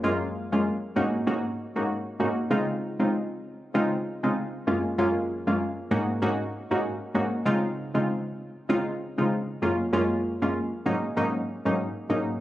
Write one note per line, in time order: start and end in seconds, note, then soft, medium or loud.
0.03 0.48 F#2 loud
0.03 0.48 G#3 medium
0.03 0.48 A#3 medium
0.03 0.48 C#4 medium
0.03 0.48 F4 loud
0.52 0.64 F#2 medium
0.52 0.65 G#3 medium
0.52 0.65 A#3 medium
0.52 0.65 C#4 medium
0.52 0.65 F4 medium
0.96 1.25 G#2 loud
0.96 1.25 A#3 medium
0.96 1.25 C#4 medium
0.96 1.25 D#4 medium
0.96 1.25 F#4 loud
1.27 1.44 G#2 loud
1.27 1.44 A#3 medium
1.27 1.44 C#4 medium
1.27 1.44 D#4 medium
1.27 1.44 F#4 loud
1.76 1.88 G#2 medium
1.76 1.88 A#3 medium
1.76 1.88 C#4 medium
1.76 1.88 D#4 medium
1.76 1.88 F#4 medium
2.20 2.37 G#2 medium
2.20 2.37 A#3 medium
2.20 2.37 C#4 medium
2.20 2.37 D#4 medium
2.20 2.37 F#4 medium
2.50 2.95 C#3 loud
2.50 2.95 G#3 medium
2.50 2.95 C4 medium
2.50 2.95 D#4 medium
2.50 2.95 F4 loud
2.99 3.12 C#3 medium
2.99 3.12 G#3 medium
2.99 3.12 C4 medium
2.99 3.12 D#4 medium
2.99 3.12 F4 medium
3.74 3.91 C#3 medium
3.74 3.91 G#3 medium
3.74 3.91 C4 medium
3.74 3.92 D#4 medium
3.74 3.92 F4 loud
4.23 4.36 C#3 medium
4.23 4.36 G#3 medium
4.23 4.36 C4 medium
4.23 4.36 D#4 medium
4.23 4.36 F4 medium
4.67 4.84 F#2 medium
4.67 4.84 G#3 medium
4.67 4.84 A#3 medium
4.67 4.84 C#4 medium
4.67 4.84 F4 medium
4.98 5.43 F#2 loud
4.98 5.43 G#3 medium
4.98 5.43 A#3 medium
4.98 5.43 C#4 medium
4.98 5.43 F4 loud
5.47 5.59 F#2 medium
5.47 5.59 G#3 medium
5.47 5.59 A#3 medium
5.47 5.59 C#4 medium
5.47 5.60 F4 medium
5.91 6.20 G#2 medium
5.91 6.20 A#3 medium
5.91 6.20 C#4 medium
5.91 6.20 D#4 medium
5.91 6.20 F#4 loud
6.22 6.39 G#2 medium
6.22 6.39 A#3 medium
6.22 6.39 C#4 medium
6.22 6.39 D#4 medium
6.22 6.39 F#4 loud
6.71 6.83 G#2 medium
6.71 6.83 A#3 medium
6.71 6.83 C#4 medium
6.71 6.83 D#4 medium
6.71 6.83 F#4 medium
7.15 7.32 G#2 medium
7.15 7.32 A#3 medium
7.15 7.32 C#4 medium
7.15 7.32 D#4 medium
7.15 7.32 F#4 medium
7.45 7.90 C#3 loud
7.45 7.90 G#3 medium
7.45 7.90 C4 medium
7.45 7.90 D#4 medium
7.45 7.90 F4 loud
7.94 8.07 C#3 medium
7.94 8.07 G#3 medium
7.94 8.07 C4 medium
7.94 8.07 D#4 medium
7.94 8.07 F4 medium
8.69 8.86 C#3 medium
8.69 8.86 G#3 medium
8.69 8.86 C4 medium
8.69 8.86 D#4 medium
8.69 8.86 F4 loud
9.18 9.30 C#3 medium
9.18 9.30 G#3 medium
9.18 9.30 C4 medium
9.18 9.31 D#4 medium
9.18 9.31 F4 medium
9.62 9.79 F#2 medium
9.62 9.79 G#3 medium
9.62 9.79 A#3 medium
9.62 9.79 C#4 medium
9.62 9.79 F4 medium
9.93 10.37 F#2 loud
9.93 10.38 G#3 medium
9.93 10.38 A#3 medium
9.93 10.38 C#4 medium
9.93 10.38 F4 loud
10.42 10.54 F#2 medium
10.42 10.54 G#3 medium
10.42 10.54 A#3 medium
10.42 10.54 C#4 medium
10.42 10.54 F4 medium
10.86 11.15 G#2 medium
10.86 11.15 F#3 medium
10.86 11.15 A#3 medium
10.86 11.15 C#4 medium
10.86 11.15 D#4 loud
11.17 11.34 G#2 medium
11.17 11.34 F#3 medium
11.17 11.34 A#3 medium
11.17 11.34 C#4 medium
11.17 11.34 D#4 loud
11.65 11.78 G#2 medium
11.65 11.78 F#3 medium
11.65 11.78 A#3 medium
11.65 11.78 C#4 medium
11.65 11.78 D#4 medium
12.09 12.26 G#2 medium
12.09 12.26 F#3 medium
12.09 12.27 A#3 medium
12.09 12.27 C#4 medium
12.09 12.27 D#4 medium